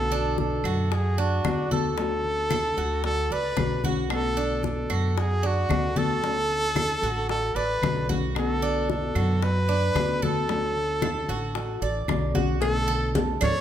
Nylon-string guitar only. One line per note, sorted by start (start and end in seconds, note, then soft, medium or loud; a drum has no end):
0.00 0.90 B2 medium
0.00 0.90 D3 medium
0.00 0.91 A3 medium
0.00 0.90 B3 medium
0.00 0.91 F#4 medium
0.91 muted nylon-string guitar stroke medium
1.44 1.70 D3 medium
1.44 1.70 A3 soft
1.44 1.70 B3 medium
1.44 1.70 F#4 medium
1.71 1.96 D3 medium
1.71 1.97 A3 medium
1.71 1.97 B3 medium
1.71 1.97 F#4 medium
1.97 3.03 D3 medium
1.97 3.04 A3 medium
1.97 3.03 C#4 medium
1.97 3.05 F#4 medium
3.04 muted nylon-string guitar stroke medium
3.57 3.83 D3 medium
3.57 3.83 A3 medium
3.57 3.83 C#4 medium
3.57 3.83 F#4 medium
3.84 4.10 A3 medium
3.84 4.10 C#4 medium
3.84 4.10 F#4 medium
4.10 5.15 B2 medium
4.10 5.16 D3 medium
4.10 5.17 A3 medium
4.10 5.17 B3 medium
4.10 5.17 F#4 medium
5.17 muted nylon-string guitar stroke medium
5.69 5.95 D3 medium
5.69 5.96 A3 medium
5.69 5.95 B3 medium
5.69 5.95 F#4 medium
5.96 6.21 D3 medium
5.96 6.22 A3 medium
5.96 6.22 B3 medium
5.96 6.22 F#4 medium
6.23 7.28 D3 medium
6.23 7.29 A3 medium
6.23 7.29 C#4 medium
6.23 7.30 F#4 medium
7.29 muted nylon-string guitar stroke medium
7.82 8.08 D3 medium
7.82 8.09 A3 medium
7.82 8.08 C#4 medium
7.82 8.07 F#4 medium
8.09 8.36 A3 medium
8.09 8.35 C#4 medium
8.09 8.35 F#4 medium
8.35 9.41 B2 medium
8.35 9.41 D3 medium
8.35 9.43 A3 medium
8.35 9.42 B3 medium
8.35 9.44 F#4 medium
9.42 muted nylon-string guitar stroke medium
9.96 10.22 D3 medium
9.96 10.22 A3 medium
9.96 10.22 B3 medium
9.96 10.22 F#4 medium
10.23 10.48 D3 medium
10.23 10.49 A3 medium
10.23 10.48 B3 medium
10.23 10.48 F#4 medium
10.49 11.54 D3 medium
10.49 11.55 A3 medium
10.49 11.55 C#4 medium
10.49 11.56 F#4 medium
11.56 muted nylon-string guitar stroke medium
12.08 12.34 D3 soft
12.08 12.34 A3 medium
12.08 12.35 C#4 medium
12.08 12.34 F#4 medium
12.35 12.62 A3 medium
12.35 12.61 C#4 medium
12.35 12.60 F#4 medium
12.62 13.14 B2 medium
12.62 13.14 D3 medium
12.62 13.14 A3 medium
12.62 13.14 B3 medium
12.62 13.15 F#4 medium
13.16 13.61 D3 soft
13.16 13.61 A3 medium
13.16 13.61 B3 soft
13.16 13.61 F#4 medium